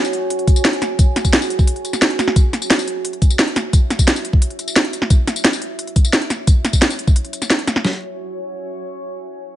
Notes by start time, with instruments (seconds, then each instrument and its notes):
Already playing: ambient pad F#4 C#5 G#5
0.05 tambourine
0.13 closed hi-hat
0.30 closed hi-hat
0.39 closed hi-hat
0.47 kick, closed hi-hat, tambourine
0.56 tambourine
0.65 snare, closed hi-hat, tambourine
0.73 closed hi-hat
0.82 snare, closed hi-hat, tambourine
0.99 kick, closed hi-hat, tambourine
1.16 snare, closed hi-hat, tambourine
1.25 kick, closed hi-hat, tambourine
1.33 snare, closed hi-hat, tambourine
1.42 tambourine
1.50 closed hi-hat
1.59 kick, tambourine
1.67 closed hi-hat
1.76 closed hi-hat
1.85 closed hi-hat, tambourine
1.93 snare, tambourine
2.02 snare, closed hi-hat, tambourine
2.10 closed hi-hat
2.19 snare, closed hi-hat, tambourine
2.28 snare
2.36 ambient pad E5, kick, closed hi-hat, tambourine
2.53 snare, closed hi-hat, tambourine
2.62 closed hi-hat, tambourine
2.70 snare, closed hi-hat, tambourine
2.79 tambourine
2.88 closed hi-hat
3.05 closed hi-hat
3.13 closed hi-hat
3.22 kick, closed hi-hat, tambourine
3.30 tambourine
3.39 snare, closed hi-hat, tambourine
3.48 closed hi-hat
3.56 snare, closed hi-hat, tambourine
3.73 kick, closed hi-hat, tambourine
3.90 snare, closed hi-hat, tambourine
3.99 kick, closed hi-hat, tambourine
4.08 snare, closed hi-hat, tambourine
4.16 tambourine
4.25 closed hi-hat
4.33 kick
4.42 closed hi-hat
4.50 closed hi-hat
4.59 closed hi-hat, tambourine
4.68 tambourine
4.76 snare, closed hi-hat, tambourine
4.85 closed hi-hat
4.93 closed hi-hat, tambourine
5.02 snare
5.10 kick, closed hi-hat, tambourine
5.27 snare, closed hi-hat, tambourine
5.36 closed hi-hat, tambourine
5.45 snare, closed hi-hat, tambourine
5.53 tambourine
5.62 closed hi-hat
5.79 closed hi-hat
5.87 closed hi-hat
5.96 kick, closed hi-hat, tambourine
6.05 tambourine
6.13 snare, closed hi-hat, tambourine
6.22 closed hi-hat
6.30 snare, closed hi-hat, tambourine
6.47 kick, closed hi-hat, tambourine
6.65 snare, closed hi-hat, tambourine
6.73 kick, closed hi-hat, tambourine
6.82 snare, closed hi-hat, tambourine
6.90 tambourine
6.99 closed hi-hat
7.07 kick, tambourine
7.16 closed hi-hat
7.25 closed hi-hat
7.33 closed hi-hat, tambourine
7.42 snare, tambourine
7.50 snare, closed hi-hat, tambourine
7.59 closed hi-hat
7.67 snare, closed hi-hat, tambourine
7.76 snare
7.85 snare